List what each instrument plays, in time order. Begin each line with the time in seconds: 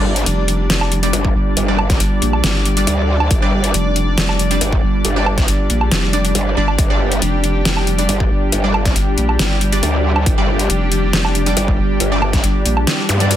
Already playing: wobble bass G1, analog synth pad G3 D4 D5
0.16 closed hi-hat
0.26 wobble bass F1, closed hi-hat
0.48 closed hi-hat
0.70 wobble bass F1, snare, closed hi-hat
0.81 low woodblock
0.92 closed hi-hat
1.03 synth stab G3 D4 D5, closed hi-hat
1.13 wobble bass G1, closed hi-hat
1.25 kick
1.35 wobble bass G1
1.57 wobble bass G1, closed hi-hat
1.68 synth stab G3 D4 D5
1.79 low woodblock
1.90 kick, snare, closed hi-hat
2.00 wobble bass G1, closed hi-hat
2.22 wobble bass A#1, closed hi-hat
2.33 low woodblock
2.44 wobble bass G1, snare, closed hi-hat
2.65 closed hi-hat
2.77 synth stab G3 D4 D5, closed hi-hat
2.87 wobble bass D2, closed hi-hat
3.20 low woodblock
3.31 wobble bass G1, kick, closed hi-hat
3.42 synth stab G3 D4 D5
3.64 closed hi-hat
3.74 wobble bass F1, closed hi-hat
3.96 closed hi-hat
4.18 wobble bass F1, snare, closed hi-hat
4.29 low woodblock
4.39 closed hi-hat
4.51 synth stab G3 D4 D5, closed hi-hat
4.61 wobble bass G1, closed hi-hat
4.72 kick
4.83 wobble bass G1
5.05 wobble bass G1, closed hi-hat
5.16 synth stab G3 D4 D5
5.26 low woodblock
5.38 kick, snare, closed hi-hat
5.48 wobble bass G1, closed hi-hat
5.70 wobble bass A#1, closed hi-hat
5.81 low woodblock
5.92 wobble bass F1, snare, closed hi-hat
6.13 synth stab G3 D4 D5, closed hi-hat
6.25 closed hi-hat
6.35 wobble bass G1, closed hi-hat
6.57 wobble bass G1, synth stab G3 D4 D5
6.68 low woodblock
6.78 wobble bass G1, analog synth pad G4, kick, closed hi-hat
6.90 synth stab G3 D4 D5
7.12 closed hi-hat
7.22 wobble bass F1, closed hi-hat
7.44 closed hi-hat
7.65 wobble bass F1, snare, closed hi-hat
7.77 low woodblock
7.87 closed hi-hat
7.99 synth stab G3 D4 D5, closed hi-hat
8.09 wobble bass G1, closed hi-hat
8.20 kick
8.31 wobble bass G1
8.52 wobble bass G1, closed hi-hat
8.64 synth stab G3 D4 D5
8.74 low woodblock
8.85 kick, snare, closed hi-hat
8.96 wobble bass G1, closed hi-hat
9.18 wobble bass A#1, closed hi-hat
9.29 low woodblock
9.39 wobble bass G1, snare, closed hi-hat
9.61 closed hi-hat
9.72 synth stab G3 D4 D5, closed hi-hat
9.83 wobble bass D2, closed hi-hat
10.16 low woodblock
10.26 wobble bass G1, kick, closed hi-hat
10.38 synth stab G3 D4 D5
10.59 closed hi-hat
10.70 wobble bass F1, closed hi-hat
10.92 closed hi-hat
11.13 wobble bass F1, snare, closed hi-hat
11.25 low woodblock
11.35 closed hi-hat
11.46 synth stab G3 D4 D5, closed hi-hat
11.57 wobble bass G1, closed hi-hat
11.68 kick
11.79 wobble bass G1
12.00 wobble bass G1, closed hi-hat
12.12 synth stab G3 D4 D5
12.22 low woodblock
12.33 kick, snare, closed hi-hat
12.44 wobble bass G1, closed hi-hat
12.65 wobble bass A#1, closed hi-hat
12.77 low woodblock
12.87 snare, closed hi-hat
13.09 wobble bass G2, closed hi-hat, zap
13.20 synth stab G3 D4 D5, closed hi-hat
13.31 closed hi-hat